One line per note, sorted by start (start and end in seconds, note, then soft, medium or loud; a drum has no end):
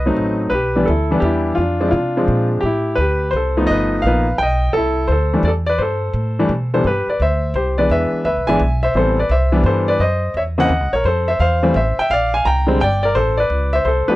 0.00 0.16 C2 medium
0.00 0.37 B4 medium
0.00 0.35 D#5 medium
0.06 0.51 F#3 medium
0.06 0.51 A3 medium
0.06 0.51 C4 medium
0.06 0.51 D#4 medium
0.16 0.51 A1 medium
0.50 0.86 B1 medium
0.50 0.87 B4 medium
0.54 0.86 G4 medium
0.76 0.87 E3 medium
0.76 0.87 G3 medium
0.76 0.87 B3 medium
0.76 0.87 D4 medium
0.85 1.21 D2 medium
0.85 1.23 A4 medium
0.90 1.22 E4 medium
1.11 1.56 E3 medium
1.11 1.56 G3 medium
1.11 1.56 B3 medium
1.11 1.56 D4 medium
1.20 1.56 E2 medium
1.20 1.58 G4 medium
1.25 1.57 E4 medium
1.55 1.92 F2 medium
1.55 1.88 F4 medium
1.60 1.79 D4 medium
1.80 1.92 F3 medium
1.80 1.92 G#3 medium
1.80 1.92 C4 medium
1.80 1.92 D4 medium
1.88 1.93 E4 medium
1.88 2.46 F4 medium
1.92 2.27 C3 medium
1.92 2.16 D4 medium
2.17 2.62 F3 medium
2.17 2.62 G#3 medium
2.17 2.62 C4 medium
2.17 2.62 D4 medium
2.28 2.62 A#2 medium
2.61 2.97 A2 medium
2.61 2.98 G4 medium
2.66 2.97 E4 medium
2.95 3.32 D2 medium
2.95 3.33 B4 medium
3.00 3.32 G4 medium
3.31 3.68 C2 medium
3.31 3.65 C5 medium
3.36 3.68 A4 medium
3.57 4.02 F3 medium
3.57 4.02 A3 medium
3.57 4.02 B3 medium
3.57 4.02 D#4 medium
3.67 4.02 G1 medium
3.67 4.04 D#5 loud
3.71 4.03 B4 medium
4.02 4.38 A#1 medium
4.02 4.25 F3 medium
4.02 4.36 F5 medium
4.06 4.25 A#3 medium
4.06 4.26 B3 medium
4.06 4.26 D#4 medium
4.06 4.38 B4 medium
4.38 4.73 B1 medium
4.38 4.71 G5 loud
4.43 4.74 D#5 medium
4.73 5.08 C2 medium
4.73 5.10 A4 medium
4.77 5.08 E4 medium
5.08 5.42 D2 medium
5.08 5.45 C5 medium
5.12 5.43 A4 medium
5.33 5.44 E3 medium
5.33 5.44 G3 medium
5.33 5.44 A3 medium
5.33 5.44 D4 medium
5.43 5.78 E2 medium
5.43 5.50 D5 medium
5.48 5.53 A4 medium
5.66 5.80 B4 medium
5.66 5.80 D5 medium
5.78 6.13 G2 medium
5.78 6.70 A4 medium
5.78 6.68 C5 medium
6.13 6.48 A2 medium
6.39 6.50 E3 medium
6.39 6.50 G3 medium
6.39 6.50 A3 medium
6.39 6.50 D4 medium
6.49 6.83 B2 medium
6.74 6.84 C2 medium
6.74 6.84 E3 medium
6.74 6.85 G3 soft
6.74 6.84 B3 soft
6.74 6.85 D4 medium
6.74 6.85 A4 medium
6.74 6.85 C5 medium
6.84 7.05 G2 medium
6.84 7.07 G4 medium
6.84 7.07 B4 medium
7.07 7.20 B4 medium
7.07 7.20 D5 medium
7.07 muted upright bass stroke soft
7.20 7.53 D2 medium
7.20 7.54 C5 medium
7.20 7.54 E5 medium
7.54 7.88 C2 medium
7.54 7.77 G4 medium
7.54 7.76 C5 medium
7.78 8.23 E3 medium
7.78 8.23 G#3 soft
7.78 8.23 B3 soft
7.78 8.23 D4 medium
7.78 7.90 B4 medium
7.78 7.89 D5 medium
7.90 8.11 E2 medium
7.90 8.24 B4 medium
7.90 8.23 E5 medium
8.12 muted upright bass stroke soft
8.25 8.38 D2 medium
8.25 8.46 B4 medium
8.25 8.46 E5 medium
8.36 8.48 B1 medium
8.47 8.59 G#1 medium
8.47 8.59 E3 medium
8.47 8.59 G#3 medium
8.47 8.59 B3 medium
8.47 8.60 D4 medium
8.47 8.81 E5 medium
8.47 8.80 G#5 medium
8.59 8.93 B1 medium
8.83 8.95 C5 medium
8.83 8.96 E5 medium
8.94 9.29 A1 medium
8.94 9.15 E3 medium
8.94 9.16 G3 soft
8.94 9.16 B3 medium
8.94 9.16 C4 medium
8.94 9.17 C5 medium
8.98 9.18 A4 medium
9.19 9.31 B4 medium
9.19 9.31 D5 medium
9.29 9.63 C2 medium
9.29 9.64 C5 medium
9.29 9.67 E5 medium
9.52 9.98 E3 medium
9.52 9.98 G3 medium
9.52 9.98 B3 medium
9.52 9.98 D4 medium
9.64 9.98 G2 medium
9.64 9.87 A4 medium
9.64 9.89 C5 medium
9.88 10.01 B4 medium
9.88 10.01 D5 medium
9.99 10.34 F#2 medium
9.99 10.34 C5 medium
9.99 10.33 D#5 medium
10.34 10.68 E2 medium
10.34 10.43 C#5 medium
10.34 10.42 E5 medium
10.58 10.69 C#3 medium
10.58 10.69 E3 medium
10.58 10.69 A#3 medium
10.58 10.70 C4 medium
10.58 10.92 D#5 medium
10.58 10.92 F#5 loud
10.69 10.80 D#2 medium
10.80 10.92 C#2 soft
10.93 11.03 A#1 medium
10.93 11.06 A#4 medium
10.93 11.06 C#5 medium
11.04 11.39 F2 medium
11.04 11.28 A4 medium
11.04 11.28 C5 medium
11.28 11.40 C5 medium
11.28 11.40 E5 medium
11.39 11.74 E2 medium
11.39 11.74 C5 medium
11.39 11.77 F5 medium
11.63 11.74 E3 medium
11.63 11.75 G3 medium
11.63 11.74 A3 medium
11.63 11.75 C4 medium
11.74 11.96 A1 medium
11.74 11.98 C5 medium
11.74 11.99 E5 medium
11.99 12.11 E5 medium
11.99 12.12 G5 medium
12.10 12.44 A#1 medium
12.10 12.33 D5 medium
12.10 12.32 F5 loud
12.34 12.47 F5 medium
12.34 12.45 G#5 medium
12.45 12.80 C2 medium
12.45 12.79 G5 medium
12.45 12.82 A#5 medium
12.67 12.79 D3 medium
12.67 12.79 G3 medium
12.67 12.79 G#3 medium
12.67 12.80 C4 medium
12.81 13.15 G1 loud
12.81 13.01 D5 medium
12.81 13.02 G5 loud
13.03 13.16 A#4 medium
13.03 13.15 D5 medium
13.15 13.49 A1 medium
13.15 13.37 A4 medium
13.15 13.36 C5 medium
13.37 13.72 B4 medium
13.37 13.74 D5 medium
13.50 13.84 C#2 medium
13.73 13.84 C5 medium
13.73 13.86 E5 medium
13.85 14.06 C2 medium
13.85 14.08 A4 medium
13.85 14.09 C5 medium
14.08 14.16 F3 medium
14.08 14.16 A3 medium
14.08 14.16 B3 medium
14.08 14.16 D4 medium
14.08 14.16 G4 medium
14.08 14.16 B4 medium
14.08 muted upright bass stroke soft